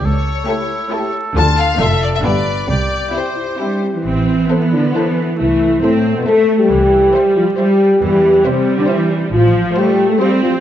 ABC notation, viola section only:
X:1
M:3/4
L:1/8
Q:1/4=136
K:C
V:1 name="Viola section"
z2 [A,E]2 [A,E]2 | [A,D]2 [A,D]2 [B,D]2 | z2 [CE]2 [CE]2 | [K:Am] C2 B,4 |
A,2 C2 A,2 | E,2 G,2 G,2 | E,2 G,4 | [K:Flyd] F,2 A,2 C2 |]